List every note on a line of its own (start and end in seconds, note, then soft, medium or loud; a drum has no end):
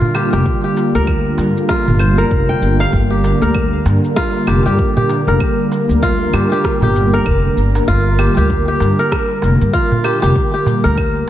0.00 11.30 D3 medium
0.00 11.30 G3 medium
0.00 11.30 A#3 medium
0.00 1.35 F4 medium
0.00 2.93 F4 medium
0.00 0.15 G4 medium
0.00 0.36 A#4 medium
0.00 11.30 A#4 medium
0.00 darbuka dum medium
0.15 0.32 G4 medium
0.15 darbuka tek medium
0.15 claves medium
0.15 shaker medium
0.33 0.41 F1 medium
0.33 0.64 G4 medium
0.33 darbuka tek medium
0.33 shaker soft
0.46 kick loud
0.46 shaker soft
0.64 2.05 G4 medium
0.77 darbuka tek medium
0.77 shaker medium
0.95 1.31 D2 medium
0.95 2.18 A#4 medium
0.95 shaker soft
1.07 kick medium
1.07 claves medium
1.07 shaker soft
1.38 1.50 G2 medium
1.38 darbuka tek medium
1.38 shaker medium
1.57 shaker soft
1.69 3.20 F4 medium
1.69 kick loud
1.69 cross-stick medium
1.69 shaker soft
1.88 2.24 G1 medium
1.88 darbuka dum medium
1.99 3.18 C5 medium
1.99 claves medium
1.99 shaker medium
2.18 3.42 A#4 medium
2.18 darbuka ka soft
2.18 shaker soft
2.31 2.53 F1 medium
2.31 kick loud
2.31 shaker soft
2.49 3.42 G5 medium
2.62 2.84 G1 medium
2.62 shaker medium
2.80 3.80 F5 medium
2.80 darbuka ka medium
2.80 darbuka tek medium
2.80 shaker soft
2.93 3.32 G1 medium
2.93 11.30 A#4 medium
2.93 kick loud
2.93 shaker soft
3.10 4.47 G4 medium
3.24 darbuka tek medium
3.24 shaker medium
3.42 3.78 D2 loud
3.42 4.69 A#4 medium
3.42 shaker soft
3.54 kick medium
3.54 claves medium
3.54 shaker soft
3.85 3.97 G2 medium
3.85 darbuka tek medium
3.85 shaker medium
4.04 shaker soft
4.16 5.68 F4 medium
4.16 kick loud
4.16 cross-stick medium
4.16 shaker soft
4.47 4.59 F1 medium
4.47 4.65 G4 medium
4.47 darbuka ka soft
4.47 darbuka tek medium
4.47 claves medium
4.47 shaker medium
4.65 4.74 G2 medium
4.65 4.96 G4 medium
4.65 shaker soft
4.79 kick loud
4.79 shaker soft
4.97 6.33 G4 medium
4.97 darbuka dum medium
5.09 darbuka tek medium
5.09 shaker medium
5.27 5.36 F1 medium
5.27 6.55 A#4 medium
5.27 darbuka tek medium
5.27 shaker soft
5.40 kick loud
5.40 claves medium
5.40 shaker soft
5.72 darbuka tek medium
5.72 shaker medium
5.89 6.26 D2 medium
5.89 shaker soft
6.02 7.54 F4 loud
6.02 kick medium
6.02 shaker soft
6.33 6.45 G2 medium
6.33 6.51 G4 medium
6.33 darbuka tek medium
6.33 claves medium
6.33 shaker medium
6.52 6.83 G4 medium
6.52 shaker soft
6.64 kick loud
6.64 cross-stick medium
6.64 shaker soft
6.82 7.19 G1 medium
6.82 8.19 G4 medium
6.82 darbuka dum medium
6.96 shaker medium
7.13 8.41 A#4 medium
7.13 darbuka ka soft
7.13 shaker soft
7.26 7.48 F1 medium
7.26 kick loud
7.26 claves medium
7.26 shaker soft
7.57 7.79 G1 medium
7.57 shaker medium
7.75 darbuka ka medium
7.75 darbuka tek medium
7.75 shaker soft
7.88 8.27 G1 medium
7.88 9.39 F4 loud
7.88 kick loud
7.88 shaker soft
8.19 8.37 G4 medium
8.19 darbuka tek medium
8.19 claves medium
8.19 shaker medium
8.37 8.73 D2 loud
8.37 8.68 G4 medium
8.37 shaker soft
8.50 kick medium
8.50 shaker soft
8.68 10.04 G4 medium
8.80 8.92 G2 medium
8.80 darbuka tek medium
8.80 shaker medium
8.99 10.26 A#4 medium
8.99 shaker soft
9.12 kick loud
9.12 cross-stick medium
9.12 claves medium
9.12 shaker soft
9.42 9.54 F1 medium
9.42 darbuka ka soft
9.42 darbuka tek medium
9.42 shaker medium
9.61 9.69 G2 medium
9.61 shaker soft
9.73 11.25 F4 loud
9.73 kick loud
9.73 shaker soft
9.92 darbuka dum medium
10.04 10.22 G4 medium
10.04 darbuka tek medium
10.04 claves medium
10.04 shaker medium
10.22 10.31 F1 medium
10.22 10.53 G4 medium
10.22 darbuka tek medium
10.22 shaker soft
10.36 kick loud
10.36 shaker soft
10.54 11.30 G4 medium
10.66 darbuka tek medium
10.66 darbuka dum medium
10.66 shaker medium
10.84 11.21 D2 loud
10.84 11.30 A#4 medium
10.84 shaker soft
10.98 kick medium
10.98 claves medium
10.98 shaker soft